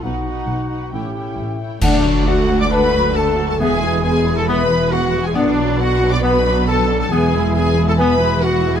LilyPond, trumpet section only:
\new Staff \with { instrumentName = "Trumpet section" } { \time 4/4 \key a \lydian \tempo 4 = 136 fis'2 g'4. r8 | \key d \lydian d'4 fis'8. d''16 b'4 a'8. a'16 | gis'4 gis'8. a'16 b'4 fis'8. gis'16 | d'4 fis'8. d''16 b'4 a'8. a'16 |
gis'4 gis'8. a'16 b'4 fis'8. gis'16 | }